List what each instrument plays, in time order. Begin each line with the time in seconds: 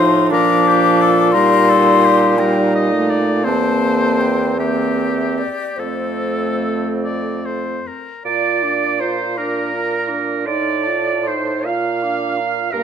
Already playing: bassoon A2, french horn F3, clarinet D#4, flute C6
0.31 bassoon A#2, french horn F3, clarinet D4, oboe A#4, flute D6
0.67 oboe G4
1.01 oboe A4
1.32 french horn G3, clarinet D#4, oboe A#4, flute C6
1.70 oboe A4
2.04 oboe G4
2.38 french horn G3, clarinet D#4, oboe A#4, flute G5
2.75 oboe D#5
2.93 french horn A3
3.10 oboe D5
3.44 bassoon E2, french horn A#3, clarinet C4, oboe C5, flute A5
4.21 flute G5
4.58 french horn A#3, clarinet C4, oboe G4, flute E5
5.38 flute D5
5.76 bassoon F2, french horn A3, clarinet C4, oboe A4, flute C5
7.04 oboe D5
7.45 oboe C5
7.87 oboe A#4
8.25 bassoon A#2, french horn F4, clarinet D5, oboe D5, flute A#5
8.63 french horn D4, flute D6
9.00 french horn F4, oboe C5, clarinet C5, flute A#5
9.37 french horn D4, oboe A#4, clarinet A#4, flute D6
9.73 french horn F4, flute A#5
10.08 french horn D4, flute D6
10.44 bassoon A2, clarinet D5, oboe D5, flute C6
10.48 french horn D#4
10.83 french horn F4, flute A5
11.23 clarinet C5, flute C6
11.27 french horn D#4, oboe C5
11.65 bassoon A#2, french horn F4, oboe F5, clarinet F5, flute A#5
12.03 french horn D4, flute D6
12.38 french horn F4, flute A#5
12.72 bassoon G2, french horn A#3, clarinet A#4, oboe A#4, flute A#5